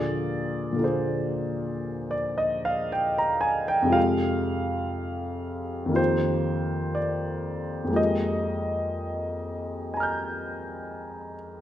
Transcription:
Already playing: A#2 D3 A#3 F4 G#4 D5
0.73 A#2 D3
0.79 A#3 F4
0.84 G#4 C5
2.11 D5
2.38 D#5
2.65 F5
2.92 G5
3.18 A#5
3.41 G#5
3.68 G5
3.82 F2 C3 G#3
3.90 F4 G4 F5
5.86 F2 D#3
5.90 A#3 F4
5.96 G4 C5
6.95 D5
7.84 F2
7.88 G#3 A#3
7.93 F4 G4 D#5
9.94 G#5 A#5
10.00 F6 G6

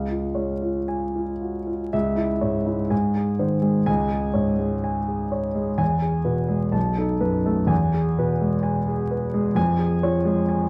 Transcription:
Already playing: C#2 F5
0.09 F4
0.35 G#3 C#5
0.62 F4
0.88 G#5
1.15 F4
1.41 F#4
1.67 F4
1.93 C#2 E5
2.16 E4
2.41 G#2 C#5
2.66 G#3 E4
2.90 G#2 G#5
3.15 G#4
3.39 D#3 C5
3.62 G#3 G#4
3.86 C#2 G#5
4.11 G#4
4.34 G#2 C#5
4.58 G#3 G#4
4.84 G#5
5.08 G#4
5.32 C#5
5.55 G#3 G#4
5.78 E2 G#5
6.02 G#4
6.25 B2 B4
6.48 G#3 G#4
6.72 B1 A5
6.98 D#4 A4
7.20 F#2 B4
7.46 A3 A4
7.67 E2 G#5
7.94 G#4
8.18 B2 B4
8.41 G#3 G#4
8.63 G#5
8.88 G#4
9.11 B4
9.34 G#3 G#4
9.55 F2 G#5
9.79 G#4
10.03 F3 C#5
10.25 G#3 G#4
10.49 G#5

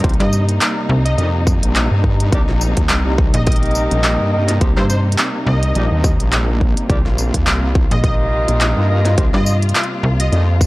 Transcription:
Already playing: C3 G3 A#3 D#4
0.04 C2 C4 D#4 G4 A#4 C5, kick, closed hi-hat
0.09 closed hi-hat
0.14 closed hi-hat
0.20 G2 D#5, snare, closed hi-hat
0.33 tambourine
0.49 closed hi-hat
0.61 clap, closed hi-hat
0.89 C2
1.05 D#5, closed hi-hat
1.18 F2 D4 D#4 G4 A#4 D5 D#5, closed hi-hat
1.47 kick, tambourine
1.63 A#1, closed hi-hat
1.76 clap, closed hi-hat
1.91 G2
2.04 kick
2.20 closed hi-hat
2.32 C2 D4 D#4 G4 A#4 D5, kick, closed hi-hat
2.49 A#1, snare
2.61 tambourine
2.77 D#2, kick, closed hi-hat
2.89 C2, clap, closed hi-hat
3.18 kick
3.34 A#1 D#5, closed hi-hat
3.47 D#4 G4 A#4 D#5, kick, closed hi-hat
3.52 closed hi-hat
3.56 closed hi-hat
3.63 closed hi-hat
3.66 closed hi-hat
3.71 closed hi-hat, tambourine
3.91 A#1, closed hi-hat
4.04 clap, closed hi-hat
4.20 G2
4.32 D#4 G4 A#4 D#5
4.49 snare, closed hi-hat
4.61 C2 C4 D#4 G4 A#4 C5, kick, closed hi-hat
4.77 G2 C5, clap, snare
4.90 C5, tambourine
5.12 closed hi-hat
5.18 clap, closed hi-hat
5.47 C2 D#5
5.63 closed hi-hat
5.75 A#1 D4 D#4 G4 A#4 D5, closed hi-hat
5.91 D#2
6.04 kick, tambourine
6.20 A#1, closed hi-hat
6.33 clap, closed hi-hat
6.61 kick
6.77 closed hi-hat
6.89 C2 D4 D#4 F4 G4 A#4 D5, kick, closed hi-hat
7.06 A#1, snare
7.18 tambourine
7.34 D#2, kick, closed hi-hat
7.47 C2, clap, closed hi-hat
7.75 kick
7.91 A#1 D#5, closed hi-hat
8.04 D#4 G4 A#4 D#5, kick, closed hi-hat
8.48 A#1, closed hi-hat
8.61 clap, closed hi-hat
8.77 G2
8.89 D#4 G4 A#4 D#5
9.05 snare, closed hi-hat
9.18 C2 C4 D#4 G4 A#4 C5, kick, closed hi-hat
9.34 G2 D#5, snare
9.46 tambourine
9.63 closed hi-hat
9.69 closed hi-hat
9.75 clap, closed hi-hat
9.84 closed hi-hat
10.03 C2
10.20 D#5, closed hi-hat
10.32 F2 D4 D#4 G4 A#4 D5 D#5, closed hi-hat
10.61 kick, tambourine

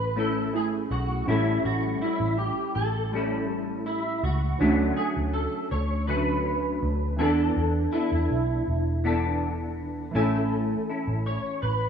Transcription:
Already playing: A1 A3 C#4 E4 A4 B4
0.16 A3 C#4 E4 A4
0.53 A3 C#4 E4 G#4
0.91 B1 F#4
1.25 A1 G3 C#4 E4
1.30 A2 A4
1.65 A1 F#4
2.01 G3 C#4 E4
2.20 A1
2.38 G4
2.75 A1 A4
3.11 A2 G3 C#4
3.16 E4
3.86 E4
4.23 C#2 F#4
4.58 D2 D3 E3 F#3 A3 C#4 D4
4.63 F#3 A3
4.96 F#3 A3 C#4 G#4
5.16 D2
5.33 A4
5.71 D2 C#5
6.07 D3 F#3 A3 C#4 B4
6.82 D2
7.17 E2 E3 B3 D4 A4
7.21 A4
7.56 E2
7.92 B3 D4 E4 A4
8.12 E2
8.30 B1
8.67 E1
9.04 E3 B3 D4 A4
10.11 A1 E3 A3 C#4 E4 A4
10.16 A3 C#4 G#5
10.89 C#4 E4
11.07 A1
11.26 C#5
11.62 A1 B4

